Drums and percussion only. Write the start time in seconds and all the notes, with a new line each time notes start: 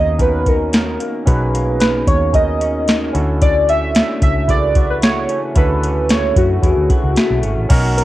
0.19 kick, closed hi-hat
0.46 kick, closed hi-hat
0.73 snare, closed hi-hat
1.00 closed hi-hat
1.27 kick, closed hi-hat
1.55 closed hi-hat
1.80 snare, closed hi-hat
2.07 kick, closed hi-hat
2.34 kick, closed hi-hat
2.61 closed hi-hat
2.88 snare, closed hi-hat
3.15 closed hi-hat
3.42 kick, closed hi-hat
3.69 closed hi-hat
3.95 snare, closed hi-hat
4.22 kick, closed hi-hat
4.48 kick, closed hi-hat
4.75 kick, closed hi-hat
5.02 snare, closed hi-hat
5.29 closed hi-hat
5.56 kick, closed hi-hat
5.83 closed hi-hat
6.09 snare, closed hi-hat
6.36 kick, closed hi-hat
6.63 kick, closed hi-hat
6.90 kick, closed hi-hat
7.16 snare, closed hi-hat
7.43 closed hi-hat
7.70 kick, closed hi-hat, crash
7.98 closed hi-hat